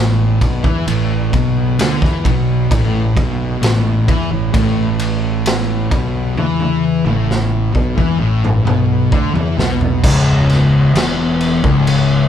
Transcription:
Already playing: fingered electric bass A1, distorted electric guitar A2
0.41 fingered electric bass B1, distorted electric guitar B2, kick, ride
0.64 fingered electric bass E2, distorted electric guitar E3, kick
0.87 fingered electric bass A1, distorted electric guitar A2, ride
1.32 fingered electric bass B1, distorted electric guitar B2, kick, ride
1.78 fingered electric bass D2, distorted electric guitar D3, snare, ride
2.02 fingered electric bass E2, distorted electric guitar E3, kick, snare
2.25 fingered electric bass B1, distorted electric guitar B2, kick, ride
2.71 fingered electric bass A1, distorted electric guitar A2, kick, ride
3.16 fingered electric bass B1, distorted electric guitar B2, kick, ride
3.61 fingered electric bass A1, distorted electric guitar A2, snare, ride
4.07 fingered electric bass E2, distorted electric guitar E3, kick, ride
4.30 fingered electric bass A1, distorted electric guitar A2
4.53 fingered electric bass A1, distorted electric guitar A2, kick, ride
4.99 ride
5.46 snare, ride
5.91 fingered electric bass B1, distorted electric guitar B2, kick, ride
6.36 fingered electric bass E2, distorted electric guitar E3, high tom
6.60 high tom
7.04 fingered electric bass A1, distorted electric guitar A2, high tom
7.31 snare
7.74 fingered electric bass B1, distorted electric guitar B2, kick
7.96 fingered electric bass E2, distorted electric guitar E3, kick
8.18 fingered electric bass A1, distorted electric guitar A2
8.44 mid tom
8.65 fingered electric bass B1, distorted electric guitar B2, mid tom
9.11 fingered electric bass D2, distorted electric guitar D3, kick
9.33 fingered electric bass E2, distorted electric guitar E3, floor tom
9.57 fingered electric bass B1, distorted electric guitar B2, snare
9.81 floor tom
10.03 fingered electric bass C#1, distorted electric guitar C#2, kick, crash
10.49 snare, crash
10.94 fingered electric bass E1, distorted electric guitar E2, snare, crash
11.41 crash
11.63 fingered electric bass C#1, distorted electric guitar C#2, kick
11.87 crash

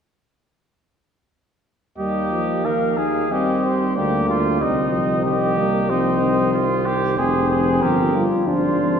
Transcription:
1.98 bass trombone D#2, trombone G3, french horn A#3, trumpet G4, cornet D#5
2.32 trombone F3
2.65 trombone D#3, trumpet A#4, cornet F5
2.97 french horn D#4, trumpet G#4
3.31 trombone G3, french horn C4, trumpet G4, cornet D#5
3.64 cornet C5
3.96 bass trombone D2, french horn A#3, trumpet G4, cornet D5
4.29 trumpet F4
4.60 bass trombone C2, trombone G3, french horn C4, trumpet D#4, cornet D#5
4.93 trombone F3
5.24 trombone D#3, trumpet G4, cornet D#5
5.57 trombone G3, french horn A#3
5.89 trombone F3, french horn C4, trumpet D#4, cornet C5
6.21 trombone D#3
6.53 trombone D#3, trumpet F4
6.86 trumpet G4
7.17 bass trombone F1, french horn C4, trumpet G#4, cornet C5
7.51 trumpet G#4
7.82 bass trombone G1, trombone F3, trumpet G4, cornet A#4
8.14 trombone G3, french horn F4
8.46 bass trombone G#1, trombone F3, french horn D4, trumpet F4, cornet C5
8.80 trombone F3

